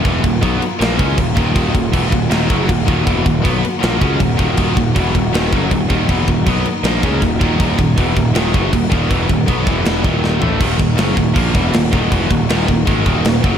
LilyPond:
<<
  \new Staff \with { instrumentName = "String section" } { \time 4/4 \key ees \minor \tempo 4 = 159 << { <ees bes ges'>1~ | <ees bes ges'>1~ | <ees bes ges'>1~ | <ees bes ges'>1~ |
<ees bes ges'>1~ | <ees bes ges'>1~ | <ees bes ges'>4. <e b e''>4 <ees bes>4. | <ees bes ges'>1~ |
<ees bes ges'>1 | } \\ { f'1~ | f'1~ | f'2 ees'2~ | ees'1~ |
ees'1~ | ees'1~ | ees'4. ges'4 f'4. | f'1~ |
f'1 | } >> }
  \new Staff \with { instrumentName = "Distorted electric guitar" } { \clef bass \time 4/4 \key ees \minor <fes, ces fes>8 <ees, bes,>8 <ces ges ces'>8 r8 <bes, f bes>8 <des aes des'>8 <ees, bes,>8 <ees, bes, ees>8 | <ees, bes, ees>8 <ees, bes,>8 <fes, ces fes>8 <ees, bes,>8 <ees, bes, ees>8 <ges, des ges>8 <ees, bes,>8 <ees, bes, ees>8 | <fes, ces fes>8 <ees, bes,>8 <ces ges ces'>8 r8 <bes, f bes>8 <des aes des'>8 <ees, bes,>8 <ees, bes, ees>8 | <ees, bes, ees>8 <ees, bes,>8 <fes, ces fes>8 <ees, bes,>8 <ees, bes, ees>8 <ges, des ges>8 <ees, bes,>8 <ees, bes, ees>8 |
<fes, ces fes>8 <ees, bes,>8 <ces ges ces'>8 r8 <bes, f bes>8 <des aes des'>8 <ees, bes,>8 <ees, bes, ees>8 | <ees, bes, ees>8 <ees, bes,>8 <fes, ces fes>8 <ees, bes,>8 <ees, bes, ees>8 <ges, des ges>8 <ees, bes,>8 <ees, bes, ees>8 | <fes, ces fes>8 <ees, bes,>8 <ces ges ces'>8 <e, b, e>4 <ees, bes, ees>4 <a, fes a>8 | <ees, bes, ees>8 <ees, bes,>8 <ges, des ges>8 <ees, bes,>8 <bes, f bes>8 <fes, ces fes>8 <ees, bes,>8 <ees, bes, ees>8 |
<fes, ces fes>8 <ees, bes,>8 <ees, bes, ees>8 <ees, bes,>8 <aes, ees aes>8 <ees, bes, ees>8 <ees, bes,>8 <ges, des ges>8 | }
  \new Staff \with { instrumentName = "Distorted electric guitar" } { \clef bass \time 4/4 \key ees \minor <fes, ces fes>8 <ees, bes,>8 <ces ges ces'>8 r8 <bes, f bes>8 <des aes des'>8 <ees, bes,>8 <ees, bes, ees>8 | <ees, bes, ees>8 <ees, bes,>8 <fes, ces fes>8 <ees, bes,>8 <ees, bes, ees>8 <ges, des ges>8 <ees, bes,>8 <ees, bes, ees>8 | <fes, ces fes>8 <ees, bes,>8 <ces ges ces'>8 r8 <bes, f bes>8 <des aes des'>8 <ees, bes,>8 <ees, bes, ees>8 | <ees, bes, ees>8 <ees, bes,>8 <fes, ces fes>8 <ees, bes,>8 <ees, bes, ees>8 <ges, des ges>8 <ees, bes,>8 <ees, bes, ees>8 |
<fes, ces fes>8 <ees, bes,>8 <ces ges ces'>8 r8 <bes, f bes>8 <des aes des'>8 <ees, bes,>8 <ees, bes, ees>8 | <ees, bes, ees>8 <ees, bes,>8 <fes, ces fes>8 <ees, bes,>8 <ees, bes, ees>8 <ges, des ges>8 <ees, bes,>8 <ees, bes, ees>8 | <fes, ces fes>8 <ees, bes,>8 <ces ges ces'>8 <e, b, e>4 <ees, bes, ees>4 <a, fes a>8 | <ees, bes, ees>8 <ees, bes,>8 <ges, des ges>8 <ees, bes,>8 <bes, f bes>8 <fes, ces fes>8 <ees, bes,>8 <ees, bes, ees>8 |
<fes, ces fes>8 <ees, bes,>8 <ees, bes, ees>8 <ees, bes,>8 <aes, ees aes>8 <ees, bes, ees>8 <ees, bes,>8 <ges, des ges>8 | }
  \new Staff \with { instrumentName = "Picked electric bass" } { \clef bass \time 4/4 \key ees \minor fes,,8 ees,,8 ces,8 r8 bes,,8 des,8 ees,,8 ees,,8 | ees,,8 ees,,8 fes,,8 ees,,8 ees,,8 ges,,8 ees,,8 ees,,8 | fes,,8 ees,,8 ces,8 r8 bes,,8 des,8 ees,,8 ees,,8 | ees,,8 ees,,8 fes,,8 ees,,8 ees,,8 ges,,8 ees,,8 ees,,8 |
fes,,8 ees,,8 ces,8 r8 bes,,8 des,8 ees,,8 ees,,8 | ees,,8 ees,,8 fes,,8 ees,,8 ees,,8 ges,,8 ees,,8 ees,,8 | fes,,8 ees,,8 ces,8 e,,4 ees,,4 a,,8 | ees,,8 ees,,8 ges,,8 ees,,8 bes,,8 fes,,8 ees,,8 ees,,8 |
fes,,8 ees,,8 ees,,8 ees,,8 aes,,8 ees,,8 ees,,8 ges,,8 | }
  \new DrumStaff \with { instrumentName = "Drums" } \drummode { \time 4/4 <cymc bd>8 <cymc bd>8 <cymc bd>8 cymc8 <cymc sn>8 <cymc bd>8 <cymc bd>8 <cymc bd>8 | <cymc bd>8 <cymc bd>8 <cymc bd>8 <cymc bd>8 <cymc sn>8 <cymc bd>8 <cymc bd>8 <cymc bd>8 | <cymc bd>8 <cymc bd>8 <cymc bd>8 cymc8 <cymc sn>8 <cymc bd>8 <cymc bd>8 <cymc bd>8 | <cymc bd>8 <cymc bd>8 <cymc bd>8 <cymc bd>8 <cymc sn>8 <cymc bd>8 <cymc bd>8 <cymc bd>8 |
<cymc bd>8 <cymc bd>8 <cymc bd>8 cymc8 <cymc sn>8 <cymc bd>8 <cymc bd>8 <cymc bd>8 | <cymc bd>8 <cymc bd>8 <cymc bd>8 <cymc bd>8 <cymc sn>8 <cymc bd>8 <cymc bd>8 <cymc bd>8 | <cymc bd>8 <cymc bd>8 <cymc bd>8 <cymc bd>8 <cymc sn>8 <cymc bd>8 sn8 tomfh8 | <cymc bd>8 <cymc bd>8 <cymc sn>8 <cymc bd>8 <cymc bd>8 <cymc bd>8 <cymc sn>8 <cymc bd>8 |
<cymc bd>8 <cymc bd>8 <cymc sn>8 <cymc bd>8 <cymc bd>8 <cymc bd>8 <cymc sn>8 <cymc bd>8 | }
>>